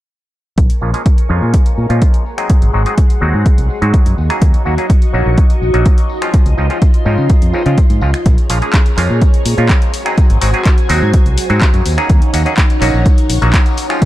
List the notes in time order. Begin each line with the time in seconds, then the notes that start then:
0.58 A#1 A#4 G#5 C#6, kick, closed hi-hat
0.70 closed hi-hat
0.81 A#1 F3 G#3 A#3 C#4 F4, tambourine
0.94 F3 G#3 A#3 C#4 G#4, closed hi-hat
1.06 kick, closed hi-hat
1.18 closed hi-hat
1.29 F2 F3 G#3 A#3 C#4 F4, tambourine
1.42 A#2, tambourine
1.54 kick, closed hi-hat
1.66 closed hi-hat
1.78 A#2, tambourine
1.89 A#2 F3 G#3 A#3 C#4 F4, closed hi-hat, tambourine
2.02 kick, closed hi-hat
2.14 closed hi-hat, tambourine
2.26 G#4 F#5 C6, tambourine
2.38 F#3 G#3 C4 D#4 G#4, finger snap, closed hi-hat
2.50 muted fingered electric bass stroke, kick, closed hi-hat
2.62 G#1, closed hi-hat
2.73 G#1 F#3 G#3 C4 D#4 F#4, tambourine
2.86 F#3 G#3 C4 D#4 G#4, closed hi-hat
2.98 kick, closed hi-hat
3.10 closed hi-hat, tambourine
3.21 D#2 F#3 G#3 C4 D#4 F#4, tambourine
3.34 G#2, tambourine
3.46 kick, closed hi-hat
3.58 C2, closed hi-hat
3.70 tambourine
3.81 G#2 F#3 G#3 C4 D#4 F#4, closed hi-hat, tambourine
3.94 kick, closed hi-hat
4.06 F#2, closed hi-hat, tambourine
4.18 D#2 F#4 D#5 C#6, tambourine
4.30 F#3 A#3 C#4 D#4 G#4, finger snap, closed hi-hat
4.42 D#2, kick, closed hi-hat
4.54 closed hi-hat
4.65 D#2 F#3 A#3 C#4 D#4 F#4, tambourine
4.78 F#3 A#3 C#4 D#4 G#4, closed hi-hat, tambourine
4.90 kick, closed hi-hat
5.02 closed hi-hat, tambourine
5.13 A#1 F#3 A#3 C#4 D#4 F#4, tambourine
5.26 A#1, tambourine
5.38 kick, closed hi-hat, tambourine
5.50 closed hi-hat
5.62 A#1, tambourine
5.74 A#1 F#3 A#3 C#4 D#4 F#4, closed hi-hat, tambourine
5.86 kick, closed hi-hat, tambourine
5.98 closed hi-hat, tambourine
6.09 tambourine
6.22 F3 G#3 C4 C#4 F4, finger snap, closed hi-hat
6.34 F4 C6, muted fingered electric bass stroke, kick, closed hi-hat, tambourine
6.46 C#2, closed hi-hat
6.57 C#2 F3 G#3 C4 C#4 D#4, tambourine
6.70 F3 G#3 C4 C#4 F4, closed hi-hat, tambourine
6.82 kick, closed hi-hat
6.93 closed hi-hat, tambourine
7.05 G#2 F3 G#3 C4 C#4 D#4, tambourine
7.18 C#3, tambourine
7.29 kick, closed hi-hat, tambourine
7.42 F2, closed hi-hat
7.53 F3 G#3 C4 C#4 D#4, tambourine
7.66 C#3 F3 G#3 C4 C#4 F4, closed hi-hat
7.78 kick, closed hi-hat, tambourine
7.90 G#2, closed hi-hat, tambourine
8.01 C#2 F3 G#3 C4 C#4 F4, tambourine
8.14 finger snap, closed hi-hat, tambourine
8.26 A#1 G#4 C#5 A#5, kick, closed hi-hat, tambourine
8.38 closed hi-hat
8.49 A#1 F3 G#3 A#3 C#4 F4, open hi-hat, tambourine
8.62 F3 G#3 A#3 C#4 G#4, closed hi-hat, tambourine
8.73 kick, clap, closed hi-hat
8.86 closed hi-hat, tambourine
8.97 F2 F3 G#3 A#3 C#4 F4, clap, open hi-hat, tambourine
9.09 A#2, tambourine
9.22 kick, closed hi-hat, tambourine
9.34 closed hi-hat
9.45 A#2, open hi-hat, tambourine
9.57 A#2 F3 G#3 A#3 C#4 F4, closed hi-hat
9.69 kick, clap, closed hi-hat, tambourine
9.81 closed hi-hat, tambourine
9.94 F#4 C5 G#5, open hi-hat, tambourine
10.05 F#3 G#3 C4 D#4 G#4, finger snap, closed hi-hat, tambourine
10.18 muted fingered electric bass stroke, kick, closed hi-hat, tambourine
10.30 G#1, closed hi-hat
10.41 G#1 F#3 G#3 C4 D#4 F#4, open hi-hat, tambourine
10.53 F#3 G#3 C4 D#4 G#4, closed hi-hat, tambourine
10.65 kick, clap, closed hi-hat, tambourine
10.78 closed hi-hat, tambourine
10.89 D#2 F#3 G#3 C4 D#4 F#4, open hi-hat, tambourine
11.02 G#2
11.14 kick, closed hi-hat, tambourine
11.26 C2, closed hi-hat
11.37 open hi-hat, tambourine
11.49 G#2 F#3 G#3 C4 D#4 F#4, closed hi-hat, tambourine
11.61 kick, clap, closed hi-hat, tambourine
11.74 F#2, closed hi-hat, tambourine
11.85 D#2 D#4 C#5 F#5, open hi-hat, tambourine
11.97 F#3 A#3 C#4 D#4 G#4, finger snap, closed hi-hat, tambourine
12.10 D#2, kick, closed hi-hat, tambourine
12.22 closed hi-hat
12.33 D#2 F#3 A#3 C#4 D#4 F#4, open hi-hat, tambourine
12.45 F#3 A#3 C#4 D#4 G#4, closed hi-hat, tambourine
12.58 kick, clap, closed hi-hat, tambourine
12.70 closed hi-hat, tambourine
12.81 A#1 F#3 A#3 C#4 D#4 F#4, clap, open hi-hat, tambourine
12.94 A#1, tambourine
13.06 kick, closed hi-hat, tambourine
13.18 closed hi-hat
13.29 A#1, open hi-hat, tambourine
13.42 A#1 F#3 A#3 C#4 D#4 F#4, closed hi-hat, tambourine
13.53 kick, clap, closed hi-hat, tambourine
13.66 closed hi-hat, tambourine
13.77 open hi-hat, tambourine
13.89 F3 G#3 C4 C#4 F4, finger snap, closed hi-hat, tambourine
14.02 D#4 C5 F5, muted fingered electric bass stroke, kick, closed hi-hat, tambourine